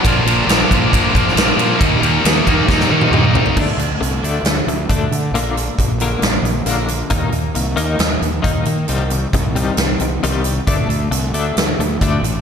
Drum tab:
CC |----------------|----------------|x---------------|----------------|
RD |x-x-x-x-x-x-x-x-|x-x-x-x---------|----------------|----------------|
HH |----------------|----------------|--x-x-x-x-x-x-x-|x-x-x-x-x-x-x-x-|
SD |----o------oo---|----o---oo------|--------o-------|--------o---o---|
T1 |----------------|-----------o----|----------------|----------------|
T2 |----------------|------------o---|----------------|----------------|
FT |----------------|--------------oo|----------------|----------------|
BD |o-----o-o-o-----|o-----o-o-------|o-----------o---|----o-----------|

CC |----------------|----------------|----------------|
RD |----------------|----------------|----------------|
HH |x-x-x-x-x-x-x-x-|x-x-x-x-x-x-x-x-|x-x-x-x-x-x-x-x-|
SD |--------o-------|--------o-------|--------o-------|
T1 |----------------|----------------|----------------|
T2 |----------------|----------------|----------------|
FT |----------------|----------------|----------------|
BD |o-----------o---|----o-----------|o-----------o---|